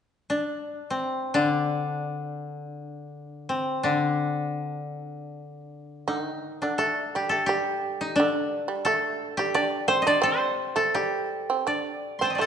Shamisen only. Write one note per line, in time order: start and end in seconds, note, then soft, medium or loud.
6.08 6.20 D3 soft
6.20 6.58 D#3 soft
6.63 6.79 D3 soft
6.79 7.12 A3 soft
7.15 7.31 G3 medium
7.31 7.48 A3 soft
7.49 8.15 G3 medium
8.20 8.66 D3 medium
8.68 8.84 G3 medium
8.86 9.34 A3 medium
9.39 9.54 G3 medium
9.55 9.87 D4 medium
9.88 10.05 C4 medium
10.07 10.21 D4 medium
10.22 10.72 C4 medium
10.76 10.93 A3 medium
10.95 11.45 G3 medium
11.50 11.66 C4 soft
11.67 12.17 D4 medium
12.21 12.38 C4 medium
12.39 12.46 A3 medium